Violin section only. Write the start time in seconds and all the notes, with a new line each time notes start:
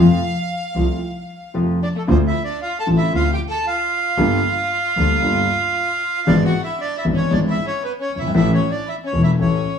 Already playing: F5
1.83 D4
1.95 A3
2.08 C4
2.28 E4
2.44 D4
2.62 F4
2.79 A4
2.96 E4
3.14 F4
3.31 G4
3.48 A4
3.65 F4
6.27 D4
6.44 F#4
6.62 E4
6.79 D4
6.96 E4
7.13 C#4
7.30 D4
7.48 E4
7.65 C#4
7.82 B3
7.99 C#4
8.16 E4
8.35 E4
8.52 C#4
8.70 D4
8.86 E4
9.04 C#4
9.22 E4
9.40 C#4